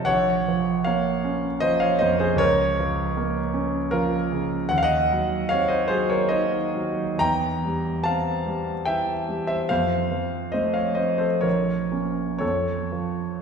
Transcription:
0.00 0.10 F3 medium
0.00 0.10 A#4 medium
0.00 0.06 C#5 medium
0.00 0.10 F5 medium
0.05 2.35 A#1 medium
0.05 0.82 C#5 medium
0.05 0.85 F#5 loud
0.48 1.09 F3 medium
0.84 1.47 A#3 medium
0.84 1.58 C#5 medium
0.84 1.61 F5 medium
1.24 1.85 C#4 medium
1.60 2.24 F3 medium
1.60 1.80 C5 medium
1.60 1.81 D#5 loud
1.80 2.00 C#5 medium
1.80 2.00 F5 medium
1.99 2.40 F2 medium
1.99 2.18 C5 medium
1.99 2.19 D#5 loud
2.20 2.38 G#4 medium
2.20 2.39 C5 medium
2.36 4.65 C#2 medium
2.36 3.89 A#4 medium
2.36 3.92 C#5 loud
2.80 3.40 F3 medium
3.17 3.78 A#3 medium
3.54 4.16 C#4 medium
3.91 4.55 F3 medium
3.91 4.67 F4 medium
3.91 4.70 A#4 loud
4.32 4.71 C#3 medium
4.69 7.17 D#2 medium
4.69 4.77 F#5 loud
4.78 4.85 F5 loud
4.83 5.47 D#5 medium
4.83 5.50 F#5 loud
5.12 5.75 F#3 soft
5.49 6.15 C4 medium
5.49 5.69 C#5 medium
5.49 5.70 F5 loud
5.68 5.86 C5 medium
5.68 5.90 D#5 medium
5.88 6.57 F#3 medium
5.88 6.09 G#4 medium
5.88 6.10 C5 loud
6.10 6.30 A#4 medium
6.10 6.31 C#5 medium
6.29 7.03 D#3 medium
6.29 7.17 C5 medium
6.29 7.20 D#5 loud
6.76 7.21 F#3 soft
7.18 9.64 E2 medium
7.18 8.02 G5 medium
7.18 8.05 A#5 loud
7.65 8.31 G3 medium
8.04 8.71 C4 medium
8.04 8.84 F5 medium
8.04 8.87 A5 loud
8.46 9.12 G3 soft
8.85 9.54 E3 soft
8.85 9.45 E5 medium
8.85 9.48 G5 loud
9.29 9.70 G3 soft
9.47 9.68 C5 medium
9.47 9.69 E5 medium
9.69 11.42 F2 medium
9.69 10.50 C5 medium
9.69 10.53 F5 loud
10.11 10.81 F3 soft
10.52 11.27 A3 soft
10.52 10.74 C5 medium
10.52 10.75 D#5 medium
10.74 10.97 C#5 medium
10.74 10.98 F5 medium
10.95 11.44 C4 soft
10.95 11.17 C5 medium
10.95 11.20 D#5 medium
11.18 11.42 A4 medium
11.18 11.43 C5 medium
11.41 12.38 A#1 medium
11.41 12.36 A#4 medium
11.41 12.37 C#5 medium
11.92 12.38 A#3 soft
11.92 12.38 C#4 soft
12.39 13.42 F2 medium
12.39 13.38 A4 medium
12.39 13.41 C#5 medium
12.92 13.42 F3 soft

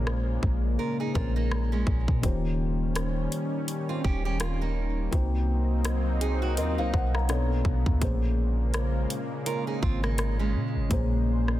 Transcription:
0.00 0.39 A#1 loud
0.00 1.10 A#2 medium
0.00 2.19 C#3 medium
0.00 2.19 G#3 medium
0.00 1.11 A#3 medium
0.00 2.19 A#3 medium
0.00 1.11 C#4 medium
0.00 1.12 G#4 medium
0.00 1.12 C5 medium
0.07 cross-stick loud
0.43 0.77 A#1 loud
0.43 kick medium
0.79 0.99 F4 medium
0.79 0.99 A#4 medium
1.00 1.15 D#4 medium
1.00 1.14 G#4 medium
1.14 1.85 A#1 loud
1.14 2.23 A#2 medium
1.14 2.21 A#3 soft
1.14 1.35 C4 medium
1.14 2.22 C#4 soft
1.14 1.35 F4 medium
1.14 2.24 G#4 soft
1.14 2.24 A#4 medium
1.14 kick medium
1.36 1.71 A#3 medium
1.36 1.70 D#4 medium
1.52 cross-stick loud
1.72 2.21 G#3 medium
1.72 2.21 C#4 medium
1.87 2.07 A#1 loud
1.87 kick loud
2.08 2.23 A#2 loud
2.08 kick medium
2.22 3.28 D#1 loud
2.22 5.08 D#3 medium
2.22 5.10 D#3 medium
2.22 5.10 G3 medium
2.22 5.08 A#3 medium
2.22 5.08 C#4 medium
2.22 5.10 C#4 medium
2.22 5.09 F4 medium
2.22 5.09 G4 medium
2.22 5.10 C5 medium
2.22 kick loud
2.22 closed hi-hat medium
2.96 cross-stick loud
2.96 closed hi-hat medium
3.32 closed hi-hat medium
3.68 closed hi-hat medium
3.89 4.04 C4 medium
3.89 4.03 F4 medium
4.04 5.09 D#1 loud
4.04 4.24 C#4 medium
4.04 4.24 G4 medium
4.04 kick medium
4.25 4.40 C#4 medium
4.25 4.40 G4 medium
4.40 4.61 C4 medium
4.40 4.60 F4 medium
4.40 cross-stick loud
4.40 closed hi-hat medium
4.61 5.10 A#3 medium
4.61 5.10 D#4 medium
5.11 6.59 C2 loud
5.11 7.27 F#3 medium
5.11 7.25 A#3 medium
5.11 7.27 A#3 medium
5.11 7.25 C4 medium
5.11 7.27 C4 medium
5.11 7.27 D#4 medium
5.11 7.26 D#4 medium
5.11 7.26 F#4 medium
5.11 6.55 C5 medium
5.11 kick loud
5.11 closed hi-hat medium
5.85 cross-stick loud
5.85 closed hi-hat medium
6.21 6.41 D#4 medium
6.21 6.41 G#4 medium
6.21 closed hi-hat medium
6.42 6.57 C4 medium
6.42 6.56 F#4 medium
6.57 6.80 D#2 loud
6.57 6.77 C4 medium
6.57 6.77 F4 medium
6.57 6.78 A#4 medium
6.57 6.77 D#5 medium
6.57 closed hi-hat medium
6.78 6.93 C2 medium
6.78 7.27 A#3 medium
6.78 7.27 D#4 medium
6.78 6.93 C5 medium
6.78 6.93 F5 medium
6.94 7.63 B1 loud
6.94 7.14 C5 medium
6.94 7.13 F#5 medium
6.94 kick medium
7.14 7.49 F5 medium
7.14 7.49 A#5 medium
7.14 cross-stick loud
7.29 8.01 B2 medium
7.29 8.01 D3 medium
7.29 8.01 A3 medium
7.29 8.02 B3 medium
7.29 8.01 B3 medium
7.29 8.02 D4 medium
7.29 8.02 A4 medium
7.29 8.02 C#5 medium
7.29 cross-stick loud
7.29 closed hi-hat medium
7.65 7.85 B1 loud
7.65 kick medium
7.86 8.01 D2 medium
7.86 kick loud
8.00 9.06 A#1 loud
8.00 10.86 A#2 medium
8.00 11.60 C#3 medium
8.00 11.60 G#3 medium
8.00 10.87 A#3 medium
8.00 10.88 A#3 medium
8.00 10.87 C#4 medium
8.00 10.88 G#4 medium
8.00 10.88 C5 medium
8.00 kick loud
8.00 closed hi-hat medium
8.74 cross-stick loud
8.74 closed hi-hat medium
9.10 closed hi-hat medium
9.46 9.66 F4 medium
9.46 9.66 A#4 medium
9.46 closed hi-hat medium
9.67 9.82 D#4 medium
9.67 9.82 G#4 medium
9.82 10.56 G#1 loud
9.82 10.03 C4 medium
9.82 10.02 F4 medium
9.82 kick medium
10.03 10.38 A#3 medium
10.03 10.38 D#4 medium
10.03 cross-stick medium
10.18 cross-stick loud
10.18 closed hi-hat medium
10.39 10.89 G#3 medium
10.39 10.88 C#4 medium
10.55 10.77 A#2 loud
10.76 10.90 G#1 medium
10.89 11.60 A#1 loud
10.89 11.60 A#2 medium
10.89 11.60 A#3 medium
10.89 11.60 C#4 medium
10.89 11.60 G#4 medium
10.89 11.60 C5 medium
10.89 kick loud
10.89 closed hi-hat medium
11.48 cross-stick medium

